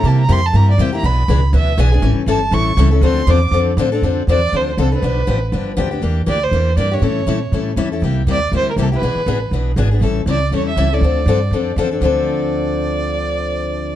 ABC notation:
X:1
M:4/4
L:1/8
Q:"Swing" 1/4=240
K:Dm
V:1 name="Violin"
a b c' a b d g b | =b4 e2 ^g2 | z2 a2 ^c'2 z2 | c'2 d'2 z4 |
z2 d2 c2 A =B- | =B4- B z3 | z2 d c3 d ^c- | ^c4- c z3 |
z2 d2 c B A =B- | =B4- B z3 | z2 d2 ^c e2 d- | d6 z2 |
d8- | d8 |]
V:2 name="Steel-string acoustic guitar"
[C,G,B,EG] z [C,G,B,EG] z [C,G,B,EG] z [C,G,B,EG] [B,EG] | [=B,,E,=B,D^G] z [B,,E,B,DG] z [B,,E,B,DG] z [B,,E,B,DG] [B,DG] | [E,G,^CEA] z [E,G,CEA] z [E,G,CEA] z [E,G,CEA] [CEA] | [D,F,CDA] z [D,F,CDA] z [D,F,CDA] z [D,F,CDA] [CDA] |
[D,F,CDA] z [D,F,CDA] z [D,F,CDA] z [D,F,CDA] [CDA] | [D,F,=B,DG] z [D,F,B,DG] z [D,F,B,DG] z [D,F,B,DG] [B,DG] | [E,B,DG] z [E,B,DG] z [E,B,DG] z [E,B,DG] [B,DG] | [E,G,^CEA] z [E,G,CEA] z [E,G,CEA] z [E,G,CEA] [CEA] |
[C,G,B,EG] z [C,G,B,EG] z [C,G,B,EG] z [C,G,B,EG] [B,EG] | [=B,,E,=B,D^G] z [B,,E,B,DG] z [B,,E,B,DG] z [B,,E,B,DG] [B,DG] | [E,G,^CEA] z [E,G,CEA] z [E,G,CEA] z [E,G,CEA] [CEA] | [D,F,CDA] z [D,F,CDA] z [D,F,CDA] z [D,F,CDA] [CDA] |
[D,F,CDA]8- | [D,F,CDA]8 |]
V:3 name="Upright bass" clef=bass
C,2 F,,2 G,,2 E,,2 | =B,,,2 ^C,,2 D,,2 B,,,2 | A,,, z G,,,2 A,,,2 ^C,,2 | D,,2 E,,2 F,,2 A,,2 |
F,,2 E,,2 D,,2 C,,2 | =B,,,2 A,,,2 G,,,2 D,,2 | E,,2 D,,2 E,,2 G,,2 | A,,2 B,,2 A,,2 E,,2 |
C,,2 _E,,2 D,,2 C,,2 | =B,,, z A,,,2 B,,,2 ^G,,,2 | A,,,2 ^C,,2 E,,2 C,,2 | D,,2 G,,2 F,,2 E,,2 |
D,,8- | D,,8 |]